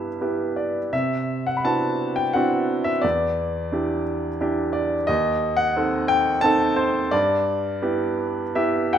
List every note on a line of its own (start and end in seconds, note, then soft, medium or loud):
0.00 0.89 G2 soft
0.00 0.21 B3 soft
0.00 0.21 E4 soft
0.00 0.22 G4 soft
0.00 0.93 E5 medium
0.21 0.78 B3 soft
0.21 0.79 E4 soft
0.21 0.79 G4 soft
0.56 0.94 D5 soft
0.93 3.00 C3 soft
0.93 1.48 E5 medium
1.47 1.58 F#5 medium
1.57 1.64 B5 soft
1.65 2.21 B3 soft
1.65 2.21 C4 soft
1.65 2.21 D4 soft
1.65 2.21 E4 soft
1.65 2.21 F#4 soft
1.65 2.14 A5 medium
2.16 2.35 G5 medium
2.33 2.90 B3 soft
2.33 2.90 C4 soft
2.33 2.91 D4 soft
2.33 2.91 E4 soft
2.33 2.91 F#4 soft
2.33 2.88 F#5 medium
2.84 3.01 E5 medium
3.02 5.05 E2 soft
3.02 4.02 D5 medium
3.72 4.27 D4 soft
3.72 4.27 E4 soft
3.72 4.28 G4 soft
4.41 4.95 D4 soft
4.41 4.95 E4 soft
4.41 4.95 G4 soft
4.73 5.05 D5 medium
5.07 7.08 D#2 medium
5.07 5.54 D#5 medium
5.57 6.10 F#5 medium
5.76 6.31 C4 soft
5.76 6.30 D#4 soft
5.76 6.31 A4 soft
6.08 6.41 G5 medium
6.41 6.98 C4 soft
6.41 6.99 D#4 soft
6.41 6.99 A4 medium
6.41 6.74 A5 medium
6.76 7.09 C5 medium
7.11 8.98 G2 medium
7.11 8.51 D5 medium
7.82 8.41 B3 soft
7.82 8.41 E4 soft
7.82 8.41 G4 soft
8.55 8.98 B3 soft
8.55 8.98 E4 soft
8.55 8.98 G4 soft
8.55 8.90 E5 medium
8.93 8.98 F#5 medium
8.93 8.98 G5 medium